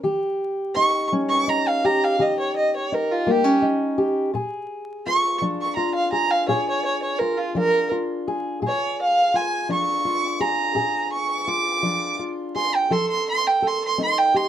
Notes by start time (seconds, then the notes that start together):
0.03 D#3 G4
0.75 D#4 C#6
1.12 G3 C#4
1.29 C#6
1.47 D#4 A#5
1.68 F5
1.84 G4 A#5
2.04 F5
2.19 D#3 G4 D#5
2.39 C#5
2.56 D#5
2.76 C#5
2.92 D#4 A#4
3.11 F4
3.27 G3 A#3
3.31 G4
3.44 C#4
3.62 D#4
3.98 G4
4.34 A#2 G#4
5.06 F4 C#6
5.41 F3 D4
5.61 C#6
5.76 F4 A#5
5.95 F5
6.12 G#4 A#5
6.31 F5
6.48 A#2 G#4 C#5
6.69 C#5
6.85 C#5
7.02 C#5
7.19 F4 A#4
7.38 F4
7.55 F3 D4 A#4
7.91 F4
8.28 G#4
8.62 A#2 G#4
8.67 C#5
9.02 F5
9.34 F4 G#5
9.69 F3 D4 C#6
10.05 F4
10.40 G#4 A#5
10.75 A#2 G#4
11.12 C#6
11.47 F4 D6
11.83 F3 D4
12.19 F4
12.55 G#4 C6
12.75 G5
12.91 F3 A4 C6
13.09 C6
13.29 C6
13.47 G5
13.62 A4
13.67 C6
13.84 C6
13.98 C4 D#4
14.03 C6
14.18 G5
14.34 G4 C6